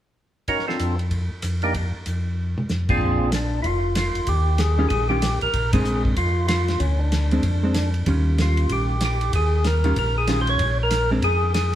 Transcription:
0.48 C#4 D#4 F#4 A#4, kick, ride
0.59 snare
0.68 C4 D4 F4 A4, snare
0.79 F2, hi-hat pedal, ride
0.99 ride
1.11 kick, ride
1.42 F2, cross-stick, hi-hat pedal, ride
1.62 A#3 D4 D#4 G4, ride
1.74 kick, ride
2.06 F2, hi-hat pedal, ride
2.58 mid tom
2.69 F2, snare, hi-hat pedal
2.89 A#2 C4 D4 F4 G#4, kick, crash
3.01 A#1, kick
3.32 D4, snare, hi-hat pedal, ride
3.62 F1 E4 F4, kick, ride
3.95 F4, snare, hi-hat pedal, ride
4.15 F1, ride
4.27 D#2 G4, kick, ride
4.58 G#4, snare, hi-hat pedal, ride
4.78 D#3 G3 C#4 F4
4.89 A#1 G#4, kick, ride
5.09 D#3 G3 C#4 F4 G4
5.22 snare, hi-hat pedal, ride
5.41 A#1 A#4, ride
5.54 A#1, kick, ride
5.73 G#3 C4 D4 G#4, kick, ride
5.85 hi-hat pedal
6.05 kick
6.16 F2 F4, kick, ride
6.48 F4, snare, hi-hat pedal, ride
6.68 snare, ride
6.80 D2 C#4, kick, ride
6.99 D4
7.12 snare, hi-hat pedal, ride
7.31 G#3 C4 D4, ride
7.43 F2, kick, ride
7.63 G#3 C4 D4
7.74 snare, hi-hat pedal, ride
7.94 ride
8.06 D#2 D#3 G3 C#4 F4, kick, ride
8.38 F4, snare, hi-hat pedal, ride
8.57 ride
8.69 A#1 G4, kick, ride
9.01 snare, hi-hat pedal, ride
9.05 G4
9.21 ride
9.33 D#2 G#4, kick, ride
9.64 A#4, snare, hi-hat pedal, ride
9.84 D#3 G3 C#4 F4, ride
9.96 A#1 A#4, kick, ride
10.18 G#4
10.27 D#3 G3 C#4 F4, snare, hi-hat pedal, ride
10.41 C5
10.47 C#5, ride
10.59 A#1, kick, ride
10.83 A#4
10.91 snare, hi-hat pedal, ride
11.11 G#3 C4 D4
11.22 F2 G#4, kick, ride
11.54 G#4, snare, hi-hat pedal, ride

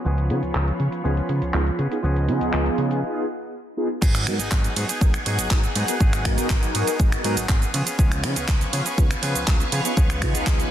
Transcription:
Already playing: F4 C#5 B5
0.04 C#2 F3 B3 C#4 G#4, shaker
0.18 closed hi-hat, shaker
0.30 C#3 B3 D#4 F4 G#4, open hi-hat
0.43 C#2, closed hi-hat, shaker
0.55 C#2, clap, shaker
0.68 closed hi-hat, shaker
0.80 C#3, open hi-hat
0.92 closed hi-hat, shaker
1.04 C#2 F3 B3 C#4 D#4 F4 G#4, shaker
1.17 closed hi-hat, shaker
1.29 C#3, open hi-hat
1.42 C#2, closed hi-hat, shaker
1.53 C#2 B3 D#4 F4 G#4, clap, shaker
1.67 closed hi-hat, shaker
1.78 C#3 B3 C#4 G#4 D#5, open hi-hat
1.91 B3 D#4 F4 G#4, closed hi-hat, shaker
2.03 C#2 F3 B3 C#4 G#4, shaker
2.16 closed hi-hat, shaker
2.27 C#3 B3 D#4 F4 G#4, open hi-hat
2.41 C#2, closed hi-hat, shaker
2.53 C#2, clap, shaker
2.66 closed hi-hat, shaker
2.78 C#3, open hi-hat
2.91 open hi-hat, shaker
3.02 B3 D#4 F4 G#4
3.77 B3 D#4 F4 G#4
4.02 G#1 F#3 B3 D#4 G#4 F#5 G#5, kick, crash, shaker
4.15 finger snap, closed hi-hat, shaker
4.27 G#2 B3 D#4 F#4 A#4, finger snap, open hi-hat
4.39 G#1 B3 D#4 G#4, closed hi-hat, shaker
4.51 G#1 F#3 B3, kick, clap, shaker
4.64 closed hi-hat, shaker
4.76 G#2 F#3 B3 D#4 G#4, open hi-hat, ride
4.89 B3 D#4 G#4, closed hi-hat, shaker
5.01 G#1 B3 D#4 F#4 A#4, kick, shaker
5.14 finger snap, closed hi-hat, shaker
5.26 G#2 F#3 B3 D#4 G#4, open hi-hat, ride
5.39 G#1, closed hi-hat, shaker
5.50 G#1 B3 D#4 F#4 G#4 A#4, kick, clap, shaker
5.63 B3 D#4 G#4, closed hi-hat, shaker
5.75 G#2 F#3 B3 D#4 G#4, open hi-hat, ride
5.88 B3 D#4 F#4 G#4 A#4, closed hi-hat, shaker
6.00 G#1 F#3 B3 D#4 G#4, kick, shaker
6.13 finger snap, closed hi-hat, shaker
6.24 G#2 B3 D#4 F#4 A#4, finger snap, kick, open hi-hat, ride
6.37 G#1 B3 D#4 G#4, closed hi-hat, shaker
6.50 G#1 F#3 B3 D#4 G#4, kick, clap, shaker
6.63 closed hi-hat, shaker
6.74 G#2 F#3 B3 D#4 G#4, open hi-hat, ride
6.87 B3 D#4 G#4, closed hi-hat, shaker
6.99 G#1 B3 D#4 F#4 A#4, kick, shaker
7.12 finger snap, closed hi-hat, shaker
7.24 G#2 F#3 B3 D#4 F#4 G#4 A#4, open hi-hat, ride
7.37 G#1, closed hi-hat, shaker
7.49 G#1 B3 D#4 F#4 G#4 A#4, kick, clap, shaker
7.61 B3 D#4 G#4, closed hi-hat, shaker
7.73 C#3 F3 B3 C#4 G#4 B4 F5 C#6, open hi-hat, ride
7.86 B3 C#4 G#4, closed hi-hat, shaker
7.98 C#2 F3 B3 C#4 G#4, kick, shaker
8.12 finger snap, closed hi-hat, shaker
8.23 C#3 B3 D#4 F4 G#4, finger snap, open hi-hat, ride
8.36 C#2 B3 C#4 G#4, closed hi-hat, shaker
8.48 C#2 F3 B3 C#4 G#4, kick, clap, shaker
8.61 closed hi-hat, shaker
8.72 C#3 F3 B3 C#4 G#4, open hi-hat, ride
8.85 B3 C#4 G#4, closed hi-hat, shaker
8.98 C#2 B3 D#4 F4 G#4, kick, shaker
9.11 finger snap, closed hi-hat, shaker
9.22 C#3 F3 B3 C#4 G#4, open hi-hat, ride
9.36 C#2, closed hi-hat, shaker
9.47 C#2 B3 C#4 D#4 F4 G#4, kick, clap, shaker
9.60 B3 C#4 G#4, closed hi-hat, shaker
9.72 C#3 F3 B3 C#4 G#4, open hi-hat, ride
9.84 B3 C#4 D#4 F4 G#4, closed hi-hat, shaker
9.97 C#2 F3 B3 C#4 G#4, kick, shaker
10.10 finger snap, closed hi-hat, shaker
10.21 C#3 B3 D#4 F4 G#4, finger snap, kick, open hi-hat, ride
10.34 C#2 B3 C#4 G#4, closed hi-hat, shaker
10.46 C#2 F3 B3 C#4 G#4, kick, clap, shaker
10.60 closed hi-hat, shaker

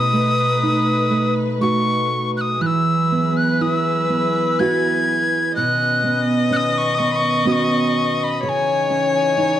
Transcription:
Already playing: B2 A3 D#4 B4 D#6
0.13 A3
0.63 D#4
1.10 A3
1.61 A3 D#4 F#4 C#6
2.37 F#6
2.41 D#6
2.59 E3 F#3 E4 G#4 B4 F#6
2.66 E6
3.12 B3
3.37 F#6
3.61 E4 E6
4.09 B3
4.59 B3 E4 F#4 G#6
5.55 B2 D#3 C#4 B4 D#5 F#6
6.04 B3
6.51 C#4 F#6
6.57 D#6
6.78 C#6
6.95 C#6 D#6
6.99 B3
7.12 B5 C#6
7.45 B3 C#4 F#4 D#6
7.52 C#6
8.20 B5 C#6
8.41 C#3 E3 D#4 C#5 B5
8.49 G#5
8.90 C#4
9.15 G#5
9.38 D#4

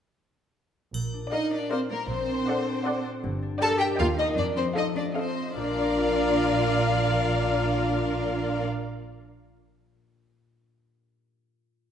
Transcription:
0.94 A#1 A#2, triangle
1.14 D4
1.31 D#4 A#4 D5 D#5 F5
1.52 D4 D5
1.70 C4 A#4 C5 D5 F5
1.90 A#3 A#4 D5
2.09 A#1 A#2 C4 C5
2.29 D4
2.48 A4 D5 F#5
2.67 D5
2.85 A4 D5 F#5
3.04 D5
3.24 G1 G2
3.42 D4
3.60 G4 A4 A#4 D5 G5 A5
3.79 G4 D5 G5
3.98 D#2 D#3 F4 G4 A#4 D#5 F5 G5
4.18 D#4 G4 A#4 D#5
4.37 F2 F3 D4 D5
4.56 C4 D#4 C5
4.75 D#4 A4 D#5 F5
4.96 D4 D5 D#5
5.09 D4
5.15 C4 A4 C5 D#5 F5
5.35 D#5
5.55 A#1 A#2 D4 F4 A#4 D5 F5
5.63 A#3
5.70 D4
5.77 F4
5.84 A#4
5.91 F5

